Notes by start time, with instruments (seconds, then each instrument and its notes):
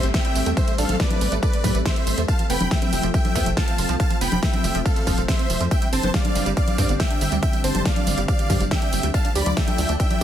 Already playing: analog synth pad G3 A3 C4, downlifter
0.03 analog synth bass A1, synth arpeggio sound C4, closed hi-hat, tambourine
0.14 synth arpeggio sound A3, supersaw synth E5 G5, kick, snare, closed hi-hat, tambourine
0.25 synth arpeggio sound E4, closed hi-hat, tambourine
0.36 analog synth bass A1, synth arpeggio sound A3, open hi-hat, tambourine
0.46 analog synth bass E2, synth arpeggio sound A3, closed hi-hat, tambourine
0.57 synth arpeggio sound E3, supersaw synth C5 E5, kick, closed hi-hat, tambourine
0.68 synth arpeggio sound A3, closed hi-hat, tambourine
0.78 analog synth bass A1, synth arpeggio sound D4, supersaw synth A4 F5, open hi-hat, tambourine
0.89 analog synth bass A1, synth arpeggio sound A3, closed hi-hat, tambourine, high conga
1.00 synth arpeggio sound E4, supersaw synth B4 D5, kick, snare, closed hi-hat, tambourine
1.11 synth arpeggio sound E4, closed hi-hat, tambourine, high conga
1.21 analog synth bass A1, synth arpeggio sound A3, open hi-hat, tambourine
1.32 analog synth bass A1, synth arpeggio sound A3, closed hi-hat, tambourine
1.43 synth arpeggio sound A4, supersaw synth B4 D5, kick, closed hi-hat, tambourine
1.53 synth arpeggio sound A3, closed hi-hat, tambourine
1.64 analog synth bass A2, synth arpeggio sound A3, kick, open hi-hat, tambourine, high conga
1.75 analog synth bass A1, synth arpeggio sound A3, closed hi-hat, tambourine
1.85 synth arpeggio sound E4, supersaw synth C5 E5, kick, snare, closed hi-hat, tambourine
1.96 synth arpeggio sound E4, closed hi-hat, tambourine
2.07 analog synth bass A1, synth arpeggio sound A3, open hi-hat, tambourine
2.18 analog synth bass E2, synth arpeggio sound A3, closed hi-hat, tambourine
2.28 synth arpeggio sound F3, analog synth pad F3 C4, supersaw synth F5 A5, kick, closed hi-hat, tambourine
2.39 synth arpeggio sound F3, closed hi-hat, tambourine
2.50 analog synth bass F1, synth arpeggio sound B3, supersaw synth G5 B5, open hi-hat, tambourine
2.60 analog synth bass F1, synth arpeggio sound A3, closed hi-hat, tambourine, high conga
2.71 synth arpeggio sound F3, supersaw synth E5 G5, kick, snare, closed hi-hat, tambourine
2.82 synth arpeggio sound C4, closed hi-hat, tambourine, high conga
2.93 analog synth bass F1, synth arpeggio sound F3, open hi-hat, tambourine
3.03 analog synth bass F1, synth arpeggio sound F3, closed hi-hat, tambourine
3.14 synth arpeggio sound F3, supersaw synth E5 G5, kick, closed hi-hat, tambourine
3.25 synth arpeggio sound F3, closed hi-hat, tambourine, high conga
3.35 analog synth bass F2, synth arpeggio sound B3, kick, open hi-hat, tambourine
3.46 analog synth bass F1, synth arpeggio sound A3, closed hi-hat, tambourine
3.57 synth arpeggio sound F3, supersaw synth F5 A5, kick, snare, closed hi-hat, tambourine
3.68 synth arpeggio sound C4, closed hi-hat, tambourine
3.78 analog synth bass F1, synth arpeggio sound F3, open hi-hat, tambourine
3.89 analog synth bass C2, synth arpeggio sound F3, closed hi-hat, tambourine
4.00 synth arpeggio sound C3, supersaw synth F5 A5, kick, closed hi-hat, tambourine
4.11 synth arpeggio sound F3, closed hi-hat, tambourine
4.21 analog synth bass F1, synth arpeggio sound B3, supersaw synth G5 B5, open hi-hat, tambourine
4.32 analog synth bass F1, synth arpeggio sound F3, closed hi-hat, tambourine, high conga
4.43 synth arpeggio sound C4, supersaw synth E5 G5, kick, snare, closed hi-hat, tambourine
4.53 synth arpeggio sound C4, closed hi-hat, tambourine, high conga
4.64 analog synth bass F1, synth arpeggio sound F3, open hi-hat, tambourine
4.75 analog synth bass F1, synth arpeggio sound F3, closed hi-hat, tambourine
4.85 synth arpeggio sound F4, supersaw synth A4 F5, kick, closed hi-hat, tambourine
4.96 synth arpeggio sound F3, closed hi-hat, tambourine
5.07 analog synth bass F1, synth arpeggio sound F3, kick, open hi-hat, tambourine, high conga
5.18 analog synth bass F1, synth arpeggio sound F3, closed hi-hat, tambourine
5.28 synth arpeggio sound C4, supersaw synth C5 E5, kick, snare, open hi-hat, tambourine
5.39 synth arpeggio sound C4, closed hi-hat, tambourine
5.50 analog synth bass F1, synth arpeggio sound F3, open hi-hat, tambourine
5.60 analog synth bass F2, synth arpeggio sound F3, closed hi-hat, tambourine
5.71 analog synth pad D3 G3, synth arpeggio sound G3, supersaw synth E5 G5, kick, closed hi-hat, tambourine
5.82 synth arpeggio sound G3, closed hi-hat, tambourine
5.93 analog synth bass G1, synth arpeggio sound C4, supersaw synth C5 A5, open hi-hat, tambourine
6.03 analog synth bass G1, synth arpeggio sound B3, closed hi-hat, tambourine, high conga
6.14 synth arpeggio sound G3, supersaw synth D5 F5, kick, snare, closed hi-hat, tambourine
6.25 synth arpeggio sound D4, closed hi-hat, tambourine, high conga
6.35 analog synth bass G1, synth arpeggio sound G3, open hi-hat, tambourine
6.46 analog synth bass G1, synth arpeggio sound G3, closed hi-hat, tambourine
6.57 synth arpeggio sound G3, supersaw synth D5 F5, kick, closed hi-hat, tambourine
6.68 synth arpeggio sound G3, closed hi-hat, tambourine, high conga
6.78 analog synth bass G2, synth arpeggio sound C4, kick, open hi-hat, tambourine
6.89 analog synth bass G1, synth arpeggio sound B3, closed hi-hat, tambourine
7.00 synth arpeggio sound G3, supersaw synth E5 G5, kick, snare, closed hi-hat, tambourine
7.11 synth arpeggio sound D4, closed hi-hat, tambourine
7.21 analog synth bass G1, synth arpeggio sound G3, open hi-hat, tambourine
7.32 analog synth bass D2, synth arpeggio sound G3, closed hi-hat, tambourine
7.43 synth arpeggio sound D3, supersaw synth E5 G5, kick, closed hi-hat, tambourine
7.53 synth arpeggio sound G3, closed hi-hat, tambourine
7.64 analog synth bass G1, synth arpeggio sound C4, supersaw synth C5 A5, open hi-hat, tambourine
7.75 analog synth bass G1, synth arpeggio sound G3, closed hi-hat, tambourine, high conga
7.85 synth arpeggio sound D4, supersaw synth D5 F5, kick, snare, closed hi-hat, tambourine
7.96 synth arpeggio sound D4, closed hi-hat, tambourine, high conga
8.07 analog synth bass G1, synth arpeggio sound G3, open hi-hat, tambourine
8.18 analog synth bass G1, synth arpeggio sound G3, closed hi-hat, tambourine
8.28 synth arpeggio sound G4, supersaw synth D5 F5, kick, closed hi-hat, tambourine
8.39 synth arpeggio sound G3, closed hi-hat, tambourine
8.50 analog synth bass G2, synth arpeggio sound G3, kick, open hi-hat, tambourine, high conga
8.61 analog synth bass G1, synth arpeggio sound G3, closed hi-hat, tambourine
8.71 synth arpeggio sound D4, supersaw synth E5 G5, kick, snare, closed hi-hat, tambourine
8.82 synth arpeggio sound D4, closed hi-hat, tambourine
8.93 analog synth bass G1, synth arpeggio sound G3, open hi-hat, tambourine
9.03 analog synth bass D2, synth arpeggio sound G3, closed hi-hat, tambourine
9.14 analog synth pad F3 A3 D4, synth arpeggio sound D4, supersaw synth F5 A5, kick, closed hi-hat, tambourine
9.25 synth arpeggio sound D4, closed hi-hat, tambourine
9.35 analog synth bass D2, synth arpeggio sound G4, supersaw synth D5 B5, open hi-hat, tambourine
9.46 analog synth bass D2, synth arpeggio sound F4, closed hi-hat, tambourine, high conga
9.57 synth arpeggio sound D4, supersaw synth E5 G5, kick, snare, closed hi-hat, tambourine
9.68 synth arpeggio sound A4, closed hi-hat, tambourine, high conga
9.78 analog synth bass D2, synth arpeggio sound D4, open hi-hat, tambourine
9.89 analog synth bass D2, synth arpeggio sound D4, closed hi-hat, tambourine
10.00 synth arpeggio sound D4, supersaw synth E5 G5, kick, closed hi-hat, tambourine
10.10 synth arpeggio sound D4, closed hi-hat, tambourine, high conga